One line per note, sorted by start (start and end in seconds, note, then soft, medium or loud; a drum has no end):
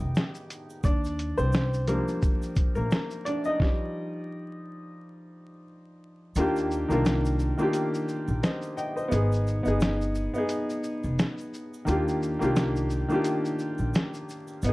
0.00 0.13 F1 medium
0.00 0.86 D#3 medium
0.00 0.86 G#3 soft
0.00 0.86 B3 medium
0.00 0.86 D#4 medium
0.00 0.47 G4 medium
0.00 0.86 D#5 loud
0.00 0.46 G5 loud
0.00 0.86 G#5 medium
0.15 snare loud
0.15 shaker medium
0.34 shaker soft
0.50 closed hi-hat medium
0.50 shaker medium
0.50 shaker soft
0.70 shaker soft
0.83 1.31 D#2 loud
0.83 1.35 D4 medium
0.83 1.40 D5 medium
0.83 kick medium
0.83 shaker medium
1.04 shaker soft
1.19 closed hi-hat medium
1.19 shaker medium
1.38 1.99 C2 medium
1.38 1.85 C4 medium
1.38 1.89 C5 loud
1.38 shaker soft
1.52 shaker medium
1.54 snare loud
1.54 shaker medium
1.74 shaker soft
1.87 3.56 F3 medium
1.87 3.56 G3 soft
1.87 2.73 A#3 medium
1.87 3.26 D4 medium
1.87 2.74 A#4 medium
1.87 closed hi-hat medium
1.87 shaker soft
2.08 shaker soft
2.22 kick medium
2.22 shaker medium
2.42 shaker soft
2.56 kick medium
2.56 closed hi-hat medium
2.56 shaker soft
2.75 2.89 A#1 medium
2.75 3.22 A#3 medium
2.75 3.26 A#4 medium
2.75 shaker soft
2.91 snare loud
2.91 shaker medium
3.10 shaker soft
3.25 3.32 D4 medium
3.25 3.30 D5 medium
3.25 closed hi-hat medium
3.25 shaker soft
3.44 5.64 D#4 medium
3.44 5.63 D#5 loud
3.44 shaker soft
3.60 6.32 F3 medium
3.60 6.33 G3 soft
3.60 6.33 D5 medium
3.60 kick loud
3.60 snare medium
6.35 6.83 D#2 loud
6.35 6.72 D#3 medium
6.35 6.72 A#3 medium
6.35 6.72 D4 medium
6.35 closed hi-hat medium
6.35 shaker medium
6.40 6.73 F4 medium
6.40 6.74 G4 medium
6.56 shaker medium
6.56 shaker soft
6.71 shaker medium
6.71 shaker soft
6.88 7.50 C2 medium
6.88 7.34 D#3 medium
6.88 7.35 A#3 medium
6.88 7.36 D4 medium
6.88 7.36 F4 medium
6.88 shaker soft
6.93 7.37 A#4 medium
7.05 snare loud
7.05 closed hi-hat medium
7.05 shaker medium
7.25 shaker medium
7.25 shaker soft
7.39 shaker soft
7.39 shaker medium
7.57 8.51 D#3 medium
7.57 8.51 A#3 medium
7.57 8.52 D4 medium
7.57 8.53 F4 medium
7.57 shaker medium
7.62 8.53 G4 loud
7.73 closed hi-hat medium
7.73 shaker medium
7.94 shaker soft
8.08 shaker soft
8.28 8.41 A#1 medium
8.28 shaker soft
8.43 8.76 C5 medium
8.43 8.76 D#5 medium
8.43 snare loud
8.43 closed hi-hat medium
8.43 shaker medium
8.62 shaker soft
8.77 8.94 D#5 medium
8.77 8.96 G5 medium
8.77 shaker soft
8.77 shaker medium
8.96 9.29 C5 medium
8.96 9.29 D#5 medium
8.96 shaker soft
9.08 9.59 G#1 loud
9.08 9.45 B3 medium
9.08 9.47 D#4 medium
9.08 closed hi-hat medium
9.08 shaker medium
9.14 9.48 G#4 medium
9.32 shaker medium
9.32 shaker soft
9.47 shaker soft
9.47 shaker medium
9.63 10.26 G1 medium
9.63 10.10 B3 medium
9.63 10.11 D#4 medium
9.63 shaker medium
9.63 shaker soft
9.68 10.12 G#4 medium
9.80 closed hi-hat medium
9.80 shaker medium
9.82 snare loud
9.82 shaker medium
10.01 shaker soft
10.15 shaker soft
10.15 shaker medium
10.34 11.27 B3 medium
10.34 11.28 D#4 medium
10.34 shaker medium
10.38 11.29 G#4 medium
10.49 closed hi-hat medium
10.49 shaker medium
10.70 shaker medium
10.70 shaker soft
10.83 shaker medium
10.83 shaker soft
11.03 11.17 F1 medium
11.03 shaker soft
11.19 snare loud
11.19 closed hi-hat medium
11.19 shaker medium
11.38 shaker soft
11.40 shaker soft
11.54 shaker medium
11.54 shaker soft
11.74 shaker medium
11.85 12.35 D#2 loud
11.85 12.22 D#3 medium
11.85 12.22 A#3 medium
11.85 12.23 D4 medium
11.85 closed hi-hat medium
11.85 shaker medium
11.89 12.24 F4 medium
11.89 12.24 G4 medium
12.08 shaker medium
12.08 shaker soft
12.22 shaker medium
12.22 shaker soft
12.39 13.02 C2 medium
12.39 12.86 D#3 medium
12.39 12.86 A#3 medium
12.39 12.87 D4 medium
12.39 12.87 F4 medium
12.39 shaker soft
12.39 shaker medium
12.44 12.88 G4 medium
12.56 snare loud
12.56 closed hi-hat medium
12.56 shaker medium
12.76 shaker soft
12.90 shaker soft
12.90 shaker medium
13.08 14.02 D#3 medium
13.08 14.03 A#3 medium
13.08 14.03 D4 medium
13.08 14.04 F4 medium
13.08 shaker medium
13.14 14.05 G4 medium
13.24 closed hi-hat medium
13.24 shaker medium
13.45 shaker medium
13.45 shaker soft
13.59 shaker soft
13.78 13.92 A#1 medium
13.78 shaker soft
13.94 closed hi-hat medium
13.94 shaker medium
13.95 snare loud
13.95 shaker medium
14.14 shaker soft
14.29 shaker soft
14.29 shaker medium
14.48 shaker soft
14.62 14.73 G#1 loud
14.62 14.73 B3 medium
14.62 closed hi-hat medium
14.62 shaker medium
14.64 14.73 D#4 medium
14.64 shaker medium
14.69 14.73 G#4 loud